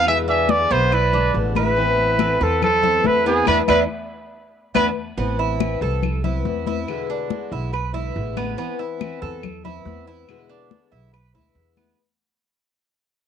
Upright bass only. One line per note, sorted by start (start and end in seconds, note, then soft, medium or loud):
0.00 0.64 E2 loud
0.71 1.31 B1 medium
1.34 2.35 A1 loud
2.41 3.01 E2 loud
3.05 3.45 E2 loud
3.47 3.63 E2 medium
3.69 3.85 E2 loud
4.75 4.91 E2 medium
5.18 5.78 A1 medium
5.81 6.41 C2 medium
6.45 6.83 E2 loud
7.51 8.12 B1 medium
8.16 8.53 A1 loud
9.22 9.82 E2 medium
9.85 10.23 E2 loud
10.92 11.32 B1 medium
11.35 11.54 D2 medium
11.55 11.93 E2 medium